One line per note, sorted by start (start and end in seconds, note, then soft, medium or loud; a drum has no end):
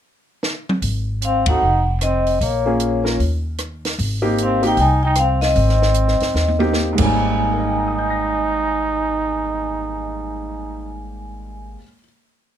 0.43 snare medium
0.69 mid tom medium
0.82 1.58 G#1 medium
0.82 kick soft
0.82 open hi-hat soft
1.22 1.47 C4 medium
1.22 1.49 F5 medium
1.22 closed hi-hat medium
1.46 1.60 C4 medium
1.46 1.61 D#4 soft
1.46 1.85 D#4 medium
1.46 1.61 F#4 medium
1.46 1.61 A4 medium
1.46 1.84 F#5 medium
1.46 kick medium
1.46 ride medium
1.62 2.37 F1 medium
2.01 2.38 C4 medium
2.01 2.43 D#5 medium
2.01 cross-stick medium
2.01 closed hi-hat soft
2.27 open hi-hat soft
2.41 3.16 A#1 medium
2.41 3.16 A#3 medium
2.41 3.17 C#5 medium
2.41 kick soft
2.41 open hi-hat soft
2.66 3.03 A#3 medium
2.66 3.03 C#4 medium
2.66 3.03 F4 soft
2.66 3.04 G#4 medium
2.80 closed hi-hat medium
3.04 3.18 A#3 soft
3.04 3.18 C#4 soft
3.04 3.18 F4 soft
3.04 3.18 A#4 medium
3.04 snare soft
3.19 3.95 D#2 medium
3.19 kick soft
3.19 open hi-hat soft
3.58 cross-stick medium
3.58 closed hi-hat soft
3.85 snare soft
3.85 open hi-hat soft
3.98 4.74 G#1 medium
3.98 kick soft
3.98 open hi-hat soft
4.22 4.60 A#3 medium
4.22 4.60 C4 medium
4.22 4.60 D#4 medium
4.22 4.60 G4 medium
4.38 closed hi-hat medium
4.43 4.64 C4 medium
4.43 4.66 F5 medium
4.62 4.76 A#3 medium
4.62 4.76 C4 medium
4.62 4.76 D#4 medium
4.62 4.76 G4 medium
4.62 open hi-hat soft
4.66 4.78 D#4 medium
4.66 4.80 G5 medium
4.77 5.52 C2 medium
4.77 5.02 D#4 medium
4.77 5.05 G#5 medium
4.77 kick soft
4.77 open hi-hat soft
5.03 5.17 D#4 medium
5.03 5.18 G5 medium
5.15 5.41 C4 medium
5.15 5.44 F5 medium
5.15 cross-stick medium
5.15 closed hi-hat soft
5.41 6.71 C4 medium
5.41 6.70 D#5 medium
5.41 snare soft
5.41 open hi-hat soft
5.56 6.16 G#1 medium
5.56 kick soft
5.56 open hi-hat soft
5.69 snare soft
5.82 snare soft
5.94 closed hi-hat medium
6.08 snare soft
6.20 6.33 G1 medium
6.20 snare soft
6.20 open hi-hat soft
6.34 6.95 D#2 medium
6.34 snare soft
6.48 high tom soft
6.59 6.98 A#3 medium
6.59 6.99 C4 medium
6.59 7.00 D#4 medium
6.59 7.00 G4 medium
6.59 high tom medium
6.73 snare soft
6.93 11.76 G#2 medium
6.93 11.77 G#3 medium
6.98 11.75 G#1 medium
6.98 11.79 A#3 medium
6.98 11.06 D#4 medium
6.98 11.76 G#5 medium
6.98 kick medium
6.98 crash medium
7.02 11.82 G3 medium
7.02 11.81 C4 medium
7.53 11.75 A#4 soft
7.60 11.79 D#5 soft
7.68 11.83 G5 soft
7.77 11.87 A#5 soft
7.88 11.93 D#6 soft
7.99 11.98 G6 soft
8.10 12.04 A#6 soft